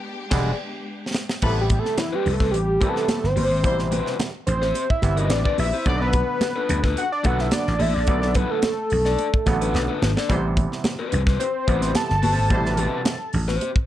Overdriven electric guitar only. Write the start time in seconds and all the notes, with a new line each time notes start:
0.31 G#4 D5 G#5
2.13 C4 G4 B4
2.40 C4 G4 B4
2.81 C4 G4 B4
3.36 C4 G4 C5
3.92 C4 G4 B4
4.62 C4 G4 C5
5.17 C4 G4 B4
5.44 C4 G4 B4
5.73 C4 G4 C5
6.56 D4 A4 B4
6.83 D4 A4 B4
7.24 D4 A4 B4
7.79 D4 A4 D5
8.35 D4 A4 B4
9.06 D4 A4 D5
9.62 D4 A4 B4
9.88 D4 A4 B4
10.17 D4 A4 D5
10.99 C4 G4 B4
11.27 C4 G4 B4
11.68 C4 G4 B4
12.22 C4 G4 C5
12.78 C4 G4 B4
13.48 C4 G4 C5